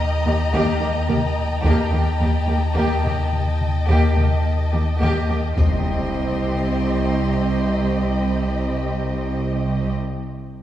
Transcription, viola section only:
0.26 0.34 A#3 soft
0.54 0.80 A#3 medium
0.81 0.89 A#3 soft
1.09 1.17 A#3 soft
1.64 1.90 A#3 medium
1.91 1.99 A#3 soft
2.20 2.28 A#3 soft
2.48 2.56 A#3 soft
2.75 3.02 A#3 soft
3.03 3.11 A#3 soft
3.87 4.14 A#3 soft
4.15 4.23 A#3 soft
4.72 4.80 A#3 soft
5.00 5.26 A#3 soft
5.28 5.36 A#3 soft
5.57 9.93 C4 soft

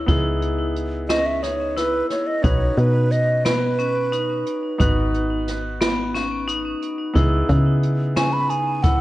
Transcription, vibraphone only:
0.08 0.65 E4 medium
1.09 1.38 C#4 medium
1.43 1.72 D#4 medium
1.77 2.34 E4 medium
2.44 3.01 D#4 medium
3.45 3.74 B3 medium
3.79 4.07 C#4 medium
4.12 4.70 D#4 medium
4.79 5.37 D#4 medium
5.81 6.09 B3 medium
6.14 6.43 C#4 medium
6.48 7.05 D#4 medium
7.15 7.73 E4 medium
8.17 8.45 C#4 medium
8.50 8.79 D#4 medium
8.84 9.01 E4 medium

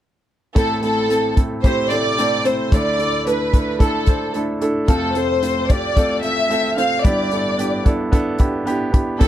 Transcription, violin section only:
0.57 0.82 A4 medium
0.83 1.33 A4 medium
1.64 1.89 C5 medium
1.91 2.45 D5 medium
2.46 2.73 C5 medium
2.73 3.27 D5 medium
3.27 3.77 B4 medium
3.82 4.35 A4 medium
4.88 5.14 A4 medium
5.15 5.70 C5 medium
5.69 6.24 D5 medium
6.22 6.73 E5 medium
6.77 7.03 F5 medium
7.04 7.85 D5 medium
9.21 9.28 A4 medium

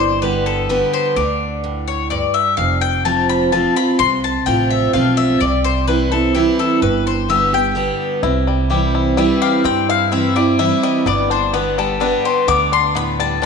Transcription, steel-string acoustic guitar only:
0.00 0.65 G2 medium
0.22 0.67 D3 medium
0.22 0.67 G3 medium
0.22 0.68 B3 medium
0.22 0.68 G4 medium
0.69 1.14 D3 medium
0.69 1.14 G3 medium
0.69 1.15 B3 medium
0.69 1.15 G4 loud
1.17 2.06 D3 medium
1.64 2.09 A2 medium
2.11 2.56 G2 medium
2.58 3.48 F2 medium
3.05 3.50 F3 medium
3.05 3.50 A3 medium
3.05 3.50 C4 medium
3.05 3.51 F4 medium
3.52 3.75 F3 medium
3.52 3.76 A3 medium
3.52 3.76 C4 medium
3.52 3.75 F4 loud
3.76 3.99 C4 medium
3.76 3.98 F4 medium
3.99 4.89 C3 medium
4.46 4.91 F3 medium
4.46 4.92 A3 medium
4.46 4.92 C4 medium
4.46 4.92 F4 medium
4.94 5.38 F3 medium
4.94 5.39 A3 medium
4.94 5.39 C4 loud
4.94 5.39 F4 medium
5.41 6.30 C3 medium
5.87 6.11 E3 medium
5.87 6.11 G3 medium
5.87 6.11 C4 medium
5.87 6.11 E4 medium
6.12 6.35 C4 medium
6.12 6.34 E4 medium
6.35 6.80 E3 medium
6.35 6.80 G3 medium
6.35 6.80 C4 loud
6.35 6.80 E4 medium
6.82 7.72 G2 medium
7.29 7.52 D3 medium
7.29 7.53 G3 medium
7.29 7.53 B3 medium
7.29 7.51 G4 medium
7.53 7.75 B3 soft
7.53 7.75 G4 medium
7.75 8.20 D3 medium
7.75 8.21 G3 loud
7.75 8.21 B3 medium
7.75 8.21 G4 loud
8.23 9.13 C3 medium
8.70 9.15 E3 medium
8.70 9.15 G3 medium
8.70 9.16 C4 medium
8.70 9.16 E4 medium
9.17 9.62 E3 medium
9.17 9.62 G3 medium
9.17 9.63 C4 loud
9.17 9.63 E4 medium
9.64 10.54 G2 medium
10.11 10.35 E3 medium
10.11 10.35 G3 medium
10.11 10.35 C4 medium
10.11 10.34 E4 medium
10.35 10.59 C4 medium
10.35 10.58 E4 medium
10.59 11.04 E3 medium
10.59 11.04 G3 medium
10.59 11.04 C4 loud
10.59 11.04 E4 loud
11.06 11.96 G2 medium
11.53 11.98 D3 medium
11.53 11.98 G3 medium
11.53 11.99 B3 medium
11.53 11.99 G4 medium
12.00 12.45 D3 medium
12.00 12.46 G3 medium
12.00 12.46 B3 medium
12.00 12.46 G4 medium
12.48 13.37 D3 medium
12.95 13.40 A2 medium
13.42 13.46 G2 medium

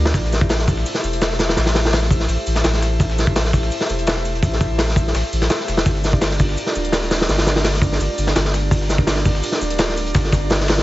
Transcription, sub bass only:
0.00 0.13 D2 medium
0.14 0.84 A1 loud
1.03 1.56 E1 medium
1.57 2.27 A1 medium
2.28 2.37 A1 medium
2.47 2.63 A1 medium
2.64 2.99 A1 medium
3.00 3.70 A1 loud
3.89 4.42 E1 medium
4.43 5.13 A1 loud
5.14 5.23 A1 medium
5.32 5.49 A1 medium
5.68 5.84 E1 medium
5.86 6.56 G1 medium
6.75 7.27 D1 medium
7.29 7.99 G1 loud
8.00 8.09 G1 medium
8.18 8.34 G1 medium
8.36 8.70 G1 medium
8.71 9.42 G1 loud
9.61 10.13 D1 medium
10.15 10.83 G1 medium

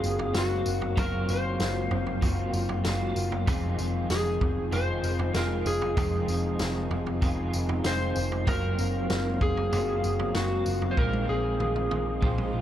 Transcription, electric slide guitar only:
0.00 0.38 G#4 loud
0.37 1.00 F#4 medium
0.99 1.30 A#4 loud
1.30 2.50 C5 medium
4.11 4.75 G#4 medium
4.73 5.35 C5 loud
5.36 5.68 A#4 medium
5.67 7.50 G#4 medium
7.86 8.50 C5 loud
8.48 9.42 A#4 loud
9.42 10.38 G#4 loud
10.36 10.92 F#4 medium
10.91 10.98 C5 medium
10.98 11.29 A#4 loud
11.29 12.50 G#4 medium

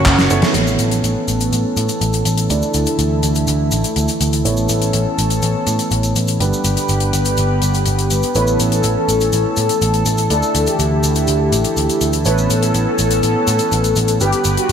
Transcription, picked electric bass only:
0.06 0.28 F#1 loud
0.30 0.41 F#1 loud
0.55 0.77 A1 medium
0.79 1.01 A1 medium
1.04 1.15 A1 medium
1.28 1.50 A1 medium
1.52 1.63 A1 medium
1.77 1.88 A2 medium
2.01 2.23 A1 medium
2.26 2.47 A1 medium
2.50 2.61 D2 medium
2.75 2.85 D2 medium
2.99 3.21 D2 medium
3.23 3.45 D2 medium
3.48 3.69 D2 medium
3.72 3.83 A1 loud
3.96 4.07 D2 medium
4.21 4.43 D2 medium
4.45 4.67 A1 medium
4.69 4.91 A1 medium
4.94 5.05 A1 medium
5.18 5.40 A1 medium
5.43 5.54 A1 medium
5.67 5.78 A2 medium
5.91 6.13 A1 medium
6.16 6.38 A1 medium
6.40 6.51 G1 loud
6.64 6.76 G1 medium
6.89 7.11 G1 medium
7.14 7.35 G1 medium
7.38 7.60 G1 medium
7.62 7.84 G1 medium
7.87 8.08 G1 medium
8.11 8.22 G1 medium
8.35 8.57 A1 medium
8.60 8.82 A1 medium
8.84 8.95 A1 medium
9.08 9.30 A1 medium
9.33 9.44 A1 medium
9.57 9.68 A2 medium
9.82 10.04 A1 medium
10.06 10.28 A1 medium
10.30 10.41 D2 loud
10.55 10.66 D2 medium
10.79 11.01 D2 medium
11.04 11.26 D2 medium
11.28 11.50 D2 medium
11.53 11.63 A1 loud
11.77 11.88 D2 medium
12.01 12.23 D2 medium
12.26 12.47 A1 loud
12.50 12.72 A1 medium
12.75 12.85 A1 medium
12.99 13.21 A1 medium
13.23 13.34 A1 medium
13.48 13.59 A2 medium
13.72 13.94 A1 medium
13.96 14.18 A1 medium
14.21 14.32 G1 loud
14.45 14.56 G1 medium

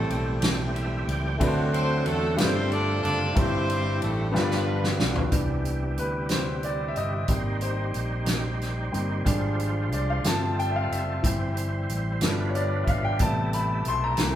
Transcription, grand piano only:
0.00 0.38 A2 medium
0.00 1.35 A3 medium
0.00 1.36 C4 medium
0.00 1.36 E4 medium
0.00 1.37 G4 medium
0.00 1.38 C5 medium
1.38 2.34 D3 medium
1.38 2.34 A3 medium
1.38 2.38 C4 medium
1.38 2.34 D4 medium
1.38 2.39 F#4 medium
1.38 1.47 B4 medium
1.48 2.42 C5 medium
2.35 3.31 G3 medium
2.35 3.35 A3 medium
2.35 3.35 D4 medium
2.35 3.36 F4 medium
2.35 3.34 G4 medium
2.35 2.45 B4 medium
2.45 3.36 C5 medium
3.34 4.30 G2 medium
3.34 4.33 E4 medium
3.34 4.33 G4 medium
3.34 4.33 C5 medium
4.32 5.28 G2 medium
4.32 5.31 B3 medium
4.32 5.32 D4 medium
4.32 5.32 F4 medium
4.32 5.33 G4 medium
4.32 4.41 C5 medium
4.41 5.36 D5 medium
5.32 6.27 E3 soft
5.32 6.27 B3 soft
5.32 6.27 D4 medium
5.99 6.29 B4 medium
6.31 6.65 C5 medium
6.64 6.91 D5 medium
6.88 6.96 E5 medium
6.97 7.59 D#5 medium
7.29 8.24 G3 soft
7.29 8.24 A#3 soft
7.29 8.24 C4 medium
7.62 9.22 C5 medium
8.92 9.22 G3 soft
8.92 9.22 A#3 soft
8.92 9.23 C4 soft
9.25 10.20 G3 soft
9.25 10.20 G#3 soft
9.25 10.21 D4 medium
9.93 10.10 D5 medium
10.10 10.26 F5 medium
10.25 10.69 F3 medium
10.25 10.69 A3 soft
10.25 10.69 C4 medium
10.25 10.60 A5 medium
10.59 10.71 G5 medium
10.71 10.75 E5 medium
10.76 10.90 F5 medium
10.92 11.86 E5 medium
11.23 11.67 E3 soft
11.23 11.67 G3 soft
11.23 11.68 C4 soft
12.22 13.17 F3 soft
12.22 13.17 A3 soft
12.22 13.17 B3 medium
12.49 12.56 C#5 medium
12.55 12.85 D5 medium
12.84 12.88 E5 medium
12.89 13.05 F5 medium
13.04 13.21 G5 medium
13.20 13.64 C3 soft
13.20 13.65 G3 soft
13.20 13.65 B3 medium
13.20 13.55 A5 medium
13.54 13.88 B5 medium
13.88 14.04 C6 medium
14.04 14.33 A#5 medium
14.20 14.35 D3 medium
14.20 14.35 E3 soft
14.20 14.35 A#3 medium

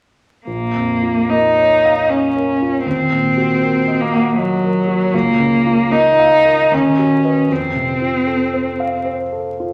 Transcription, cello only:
0.47 1.31 A#3 soft
1.30 2.10 D#4 soft
2.09 2.85 C#4 soft
2.86 4.02 C4 soft
4.01 4.37 A#3 soft
4.37 5.16 F#3 soft
5.14 5.93 A#3 medium
5.92 6.74 D#4 medium
6.73 7.53 C#4 soft
7.52 9.07 C4 soft

